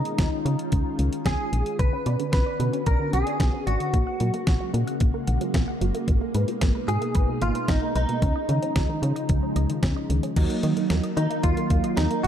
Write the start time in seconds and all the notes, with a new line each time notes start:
Already playing: D#3 G#3 C#4 D#4 F4
0.05 closed hi-hat
0.18 C#2, kick, snare, closed hi-hat
0.45 C#3, closed hi-hat
0.59 closed hi-hat
0.72 C#2, kick, closed hi-hat
0.99 C#2, closed hi-hat
1.13 closed hi-hat
1.26 C#2 G#4, kick, snare, closed hi-hat
1.53 A#1, closed hi-hat
1.66 closed hi-hat
1.79 B1 D3 B3 C#4 F#4 B4, kick, closed hi-hat
1.93 C#4
2.06 B2 D5, closed hi-hat
2.20 D3, closed hi-hat
2.33 B1 C#4 B4, kick, snare, closed hi-hat
2.46 D5
2.60 B2 D3, closed hi-hat
2.73 C#4, closed hi-hat
2.86 B1 A#4 D5, kick, closed hi-hat
3.00 D3
3.13 B1 C#4 G#4, closed hi-hat
3.27 D5, closed hi-hat
3.40 B1 D3, kick, snare, closed hi-hat
3.53 C#4
3.67 G#1 F#4 D5, closed hi-hat
3.80 D3, closed hi-hat
3.93 A#1 C#3 G#3 A#3, kick, closed hi-hat
4.07 F#5
4.20 A#2 F#3, closed hi-hat
4.34 A#3, closed hi-hat
4.47 A#1 F#5, kick, snare, closed hi-hat
4.61 F#3
4.74 A#2 A#3, closed hi-hat
4.87 F#5, closed hi-hat
5.00 A#1, kick, closed hi-hat
5.14 A#3
5.27 A#1 F#5, closed hi-hat
5.41 F#3, closed hi-hat
5.54 A#1 A#3, kick, snare, closed hi-hat
5.68 F#5
5.81 F#1 F#3, closed hi-hat
5.95 A#3, closed hi-hat
6.08 G#1 B2 D#4, kick, closed hi-hat
6.21 A#3
6.34 G#2 B4, closed hi-hat
6.48 B2, closed hi-hat
6.61 G#1 A#3, kick, snare, closed hi-hat
6.75 B4
6.88 G#2 B2 G#4, closed hi-hat
7.02 A#3, closed hi-hat
7.15 G#1 B4, kick, closed hi-hat
7.29 B2
7.42 G#1 A#3 F4, closed hi-hat
7.55 B4, closed hi-hat
7.68 G#1 B2 D#4, kick, snare, closed hi-hat
7.82 A#3
7.95 B1 D#4 B4, closed hi-hat
8.09 B2, closed hi-hat
8.22 C#2 C#3 F3 G#3 C#4, kick, closed hi-hat
8.36 D#5
8.49 C#3 D#3, closed hi-hat
8.62 C#4, closed hi-hat
8.76 C#2 D#5, kick, snare, closed hi-hat
8.89 D#3
9.02 C#3 C#4, closed hi-hat
9.16 D#5, closed hi-hat
9.29 C#2, kick, closed hi-hat
9.43 C#4
9.56 C#2 D#5, closed hi-hat
9.70 D#3, closed hi-hat
9.83 C#2 C#4, kick, snare, closed hi-hat
9.96 D#5
10.10 C#2 D#3, closed hi-hat
10.23 C#4, closed hi-hat
10.36 D#2 D#3 F#3 A#3 D#4, kick, closed hi-hat, crash
10.50 A#3, closed hi-hat
10.63 D#3 D#5, closed hi-hat
10.77 D#3, closed hi-hat
10.90 D#2 A#3, snare, closed hi-hat
11.03 D#5, closed hi-hat
11.17 D#3 D#4, closed hi-hat
11.30 A#3, closed hi-hat
11.43 D#2 F4 D#5, kick, closed hi-hat
11.57 D#3, closed hi-hat
11.70 D#2 A#3, kick, closed hi-hat
11.84 D#5, closed hi-hat
11.97 D#2 D#3 D#4, snare, closed hi-hat
12.11 A#3, closed hi-hat
12.23 F1 F#4 D#5, closed hi-hat